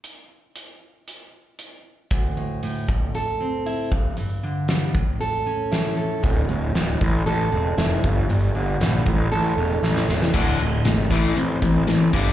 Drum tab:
CC |----------------|----------------|----------------|----------------|
HH |x---x---x---x---|o---o---o---o---|o---o---o---o---|o---o---o---o---|
SD |----------------|----------------|----o-------o---|----o-------o---|
BD |----------------|o-----o-------o-|------o---------|o-----o-------o-|

CC |----------------|x---------------|
HH |o---o---o-------|--x-x-x-x-x-x-x-|
SD |----o-------oooo|----o-------o---|
BD |------o---------|o-----o---o---o-|